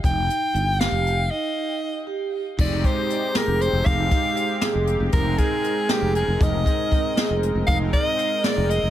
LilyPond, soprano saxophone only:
\new Staff \with { instrumentName = "Soprano saxophone" } { \time 5/8 \key f \minor \tempo 4 = 118 g''4. f''4 | ees''4. r4 | d''8 c''4 bes'8 c''8 | f''2 r8 |
bes'8 aes'4 g'8 aes'8 | ees''2 r8 | f''8 ees''4 d''8 ees''8 | }